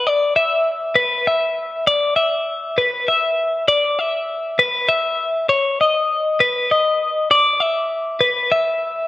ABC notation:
X:1
M:6/8
L:1/8
Q:3/8=66
K:Emix
V:1 name="Clean electric guitar"
d e2 B e2 | d e2 B e2 | d e2 B e2 | c ^d2 B d2 |
d e2 B e2 |]